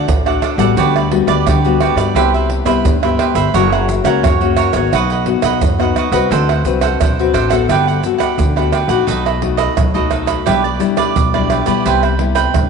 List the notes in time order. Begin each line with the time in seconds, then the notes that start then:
Already playing: A4 D5 F#5
0.08 A1, pandeiro, shaker, surdo
0.26 A3 D4 F#4 A4 D5 F#5, pandeiro, tamborim, shaker
0.42 D4 A4 D5 F#5, pandeiro, tamborim, shaker, surdo
0.58 A1 G3 B3 F#4 A4 D5 F#5, pandeiro, shaker
0.77 D2 D3 F#4 G4 B4 D5, pandeiro, shaker, surdo
0.96 G4 B4 D5, pandeiro, tamborim, shaker
1.11 G3 B3 F#4, muted cavaquinho stroke, pandeiro, surdo
1.27 D2 G4 B4 D5, pandeiro, tamborim, shaker, surdo
1.46 D3 F#4 G4 B4 D5, pandeiro, tamborim, shaker, surdo
1.65 G3 B3 F#4, pandeiro, shaker
1.81 F#4 G4 B4 D5, pandeiro, tamborim
1.96 G2 G4 B4 D5, pandeiro, tamborim, shaker, surdo
2.15 C2 C3 B3 E4 G4 B4 C5 E5, pandeiro, tamborim, shaker, surdo
2.34 B4 C5 E5, pandeiro, shaker
2.50 muted cavaquinho stroke, pandeiro
2.65 C2 B3 E4 G4 B4 C5 E5, pandeiro, tamborim, shaker, surdo
2.85 G2, pandeiro, shaker, surdo
3.03 B3 E4 G4 B4 C5 E5, pandeiro, tamborim, shaker
3.19 G4 B4 C5 E5, pandeiro, tamborim, surdo
3.35 G1 B4 C5 E5, pandeiro, shaker
3.54 F#1 F#3 A#3 C#4 F#4 A#4 C#5 F#5, pandeiro, shaker, surdo
3.72 A#4 C#5 F#5, pandeiro, tamborim, shaker
3.89 muted cavaquinho stroke, pandeiro, shaker
4.04 C#2 A#3 C#4 F#4 A#4 C#5 F#5, pandeiro, tamborim, shaker, surdo
4.23 F#2 C#3 F#4 A#4 C#5 F#5, pandeiro, tamborim, shaker, surdo
4.41 A#3 C#4 F#4, pandeiro, shaker
4.57 F#4 A#4 C#5 F#5, pandeiro, tamborim, shaker
4.73 G#1 B3 D#4 F#4 A#4 C#5 F#5, pandeiro, tamborim, shaker, surdo
4.93 B1 B2 F#4 B4 D#5 F#5, pandeiro, tamborim, shaker, surdo
5.10 B4 D#5 F#5, pandeiro, shaker
5.26 B3 D#4 F#4, muted cavaquinho stroke, pandeiro
5.42 B1 B4 D#5 F#5, pandeiro, tamborim, shaker, surdo
5.61 F#2, pandeiro, shaker, surdo
5.79 B3 D#4 F#4 B4 D#5 F#5, pandeiro, tamborim, shaker
5.96 F#4 B4 D#5 F#5, pandeiro, tamborim, shaker, surdo
6.12 C2 C4 F#4 B4 D#5 F#5, pandeiro, shaker
6.31 D2 D3 D4 A4 C5 F#5, pandeiro, shaker, surdo
6.49 A4 C5 F#5, pandeiro, tamborim, shaker
6.65 C2 C4 F#4 B4, muted cavaquinho stroke, pandeiro, shaker
6.81 A4 C5 F#5, pandeiro, tamborim, shaker, surdo
7.00 B1 A2 D4 A4 C5 F#5, pandeiro, tamborim, shaker, surdo
7.19 C4 F#4 B4, pandeiro, shaker
7.34 A1 D4 A4 C5 F#5, pandeiro, tamborim, shaker
7.50 B3 F#4 A4 C5 F#5, pandeiro, tamborim, shaker, surdo
7.69 G1 G3 D4 G4 B4 F#5, pandeiro, tamborim, shaker, surdo
7.87 G4 B4 F#5, pandeiro, shaker
8.03 B3 F#4 A4, muted cavaquinho stroke, pandeiro, shaker
8.18 G4 B4 F#5, pandeiro, tamborim, shaker, surdo
8.38 D2 D3, pandeiro, shaker, surdo
8.56 B3 F#4 G4 A4 B4 F#5, pandeiro, tamborim, shaker
8.73 D4 G4 B4 F#5, pandeiro, tamborim, shaker, surdo
8.88 A#1 A3 D#4 F#4 G4 B4 F#5, pandeiro, shaker
9.07 B1 B2 D#4 A4 B4 D#5, pandeiro, shaker, surdo
9.25 A4 B4 D#5, pandeiro, tamborim, shaker
9.42 A3 D#4 F#4, muted cavaquinho stroke, pandeiro, surdo
9.57 A4 B4 D#5, pandeiro, tamborim, shaker, surdo
9.77 B1 F#3, pandeiro, tamborim, shaker, surdo
9.94 B1 A3 D#4 F#4 A4 B4 D#5, pandeiro, shaker
10.11 D#4 A4 B4 D#5, pandeiro, tamborim, shaker
10.26 A4 B4 D#5, pandeiro, tamborim, shaker, surdo
10.46 B1 B2 G3 D4 E4 G4 B4 D5, pandeiro, tamborim, shaker, surdo
10.64 G4 B4 D5, pandeiro, shaker
10.79 G3 D4 E4, muted cavaquinho stroke, pandeiro, shaker
10.97 G4 B4 D5, pandeiro, tamborim, shaker, surdo
11.16 B1 B2, pandeiro, shaker, surdo
11.34 G3 D4 E4 G4 B4 D5, pandeiro, tamborim, shaker
11.50 E4 G4 B4 D5, pandeiro, tamborim, shaker, surdo
11.66 B2 G3 B3 E4 G4 B4 D5, pandeiro, shaker
11.85 C2 C3 E4 B4 C5 G5, pandeiro, shaker, surdo
12.03 B4 C5 G5, pandeiro, tamborim, shaker
12.19 G3 B3 E4, muted cavaquinho stroke, pandeiro
12.35 B4 C5 G5, pandeiro, tamborim, shaker, surdo
12.54 C2 G2, pandeiro, tamborim, shaker, surdo